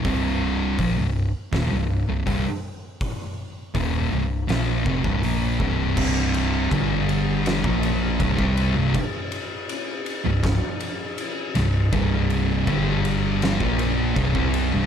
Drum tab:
CC |----------------|----------------|x---------------|----------------|
RD |----------------|----------------|--x-x-x-x-x-x-x-|x-x-x-x-x-x-x-x-|
HH |o---o---o---o---|o---o---o---o---|----------------|----------------|
SD |--------o-------|--------o-------|--------o-------|--------o-----o-|
BD |o---o---o---o---|o---o-----oo--o-|o---o----o--oo--|o-------o-------|

CC |----------------|
RD |x-x-x-x-x-x-x-x-|
HH |----------------|
SD |--------o-------|
BD |o---o----o--oo--|